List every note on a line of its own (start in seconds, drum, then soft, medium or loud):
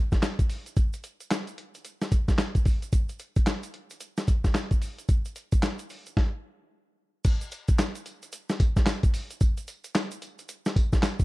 0.12 kick medium
0.12 snare medium
0.12 closed hi-hat medium
0.12 shaker soft
0.22 snare loud
0.22 clap medium
0.22 closed hi-hat medium
0.22 shaker medium
0.39 kick medium
0.39 closed hi-hat soft
0.39 shaker medium
0.50 open hi-hat medium
0.50 shaker soft
0.66 closed hi-hat medium
0.66 shaker medium
0.76 kick loud
0.76 closed hi-hat medium
0.76 shaker medium
0.93 closed hi-hat medium
0.93 shaker medium
1.04 closed hi-hat medium
1.04 shaker medium
1.20 closed hi-hat soft
1.20 shaker medium
1.31 snare loud
1.31 clap medium
1.31 closed hi-hat medium
1.31 shaker medium
1.47 closed hi-hat medium
1.47 shaker soft
1.58 closed hi-hat medium
1.75 closed hi-hat soft
1.75 shaker soft
1.85 closed hi-hat medium
1.85 shaker medium
2.01 snare medium
2.01 closed hi-hat soft
2.01 shaker medium
2.12 kick medium
2.12 closed hi-hat medium
2.12 shaker medium
2.28 kick medium
2.28 snare medium
2.28 closed hi-hat medium
2.28 shaker soft
2.38 snare loud
2.38 clap medium
2.38 closed hi-hat medium
2.38 shaker medium
2.55 kick medium
2.55 closed hi-hat soft
2.55 shaker soft
2.65 kick loud
2.65 open hi-hat medium
2.65 shaker soft
2.82 closed hi-hat medium
2.82 shaker soft
2.92 kick loud
2.92 closed hi-hat medium
2.92 shaker medium
3.09 closed hi-hat soft
3.09 shaker medium
3.19 closed hi-hat medium
3.19 shaker medium
3.36 kick medium
3.36 closed hi-hat soft
3.36 shaker soft
3.46 snare loud
3.46 clap medium
3.46 closed hi-hat medium
3.46 shaker medium
3.63 closed hi-hat medium
3.63 shaker medium
3.74 closed hi-hat medium
3.90 closed hi-hat soft
3.90 shaker soft
4.00 closed hi-hat medium
4.00 shaker medium
4.17 snare medium
4.17 closed hi-hat medium
4.17 shaker medium
4.28 kick medium
4.28 closed hi-hat medium
4.28 shaker medium
4.44 kick medium
4.44 snare medium
4.44 closed hi-hat medium
4.44 shaker soft
4.55 snare loud
4.55 clap medium
4.55 closed hi-hat medium
4.55 shaker medium
4.71 kick medium
4.71 closed hi-hat soft
4.71 shaker soft
4.82 open hi-hat medium
4.82 shaker soft
4.98 closed hi-hat medium
4.98 shaker medium
5.09 kick loud
5.09 closed hi-hat medium
5.09 shaker medium
5.25 closed hi-hat soft
5.25 shaker medium
5.36 closed hi-hat medium
5.36 shaker medium
5.52 kick loud
5.52 closed hi-hat medium
5.52 shaker medium
5.62 snare loud
5.62 clap medium
5.62 closed hi-hat medium
5.62 shaker medium
5.79 closed hi-hat medium
5.79 shaker medium
5.90 open hi-hat medium
5.90 shaker soft
6.06 closed hi-hat soft
6.06 shaker soft
6.17 kick loud
6.17 snare medium
7.25 kick loud
7.25 closed hi-hat medium
7.25 crash loud
7.25 tambourine medium
7.25 shaker medium
7.41 closed hi-hat soft
7.41 shaker medium
7.51 closed hi-hat medium
7.51 tambourine medium
7.51 shaker medium
7.68 kick medium
7.68 closed hi-hat medium
7.68 shaker medium
7.78 snare loud
7.78 clap medium
7.78 closed hi-hat medium
7.78 tambourine medium
7.78 shaker medium
7.95 closed hi-hat medium
7.95 shaker medium
8.06 closed hi-hat medium
8.06 tambourine medium
8.06 shaker soft
8.22 closed hi-hat soft
8.22 shaker soft
8.32 closed hi-hat medium
8.32 shaker medium
8.49 snare medium
8.49 closed hi-hat medium
8.49 shaker medium
8.60 kick medium
8.60 closed hi-hat medium
8.60 tambourine medium
8.76 kick medium
8.76 snare medium
8.76 closed hi-hat medium
8.76 shaker medium
8.86 snare loud
8.86 clap medium
8.86 closed hi-hat medium
8.86 tambourine medium
8.86 shaker medium
9.03 kick medium
9.03 closed hi-hat soft
9.03 shaker medium
9.14 open hi-hat medium
9.14 tambourine medium
9.14 shaker soft
9.30 closed hi-hat medium
9.30 shaker medium
9.41 kick loud
9.41 closed hi-hat medium
9.41 tambourine medium
9.41 shaker medium
9.57 closed hi-hat soft
9.57 shaker medium
9.68 closed hi-hat medium
9.68 tambourine medium
9.68 shaker medium
9.84 closed hi-hat medium
9.84 shaker medium
9.95 snare loud
9.95 clap medium
9.95 closed hi-hat medium
9.95 tambourine medium
9.95 shaker medium
10.11 closed hi-hat medium
10.11 shaker medium
10.22 closed hi-hat medium
10.22 tambourine medium
10.22 shaker soft
10.39 closed hi-hat soft
10.39 shaker soft
10.49 closed hi-hat medium
10.49 shaker medium
10.66 snare medium
10.66 closed hi-hat medium
10.66 shaker medium
10.76 kick loud
10.76 closed hi-hat medium
10.76 tambourine medium
10.93 kick medium
10.93 snare medium
10.93 closed hi-hat soft
10.93 shaker medium
11.03 snare loud
11.03 clap medium
11.03 closed hi-hat medium
11.03 tambourine loud
11.03 shaker medium
11.20 kick medium
11.20 closed hi-hat soft
11.20 shaker soft